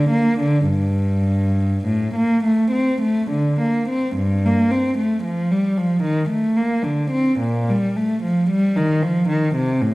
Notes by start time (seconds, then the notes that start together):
Already playing: D3
0.11 A#3
0.40 D3
0.68 G2
1.87 A2
2.15 A#3
2.44 A3
2.72 C4
3.02 A3
3.31 D3
3.61 A#3
3.89 C4
4.17 G2
4.45 A#3
4.71 C4
4.98 A3
5.24 F3
5.51 G3
5.78 F3
6.03 D#3
6.30 A3
6.57 A#3
6.83 D3
7.11 C4
7.40 A#2
7.69 G3
7.97 A3
8.24 F3
8.50 G3
8.76 D#3
9.03 F3
9.29 D#3
9.56 C3
9.82 A2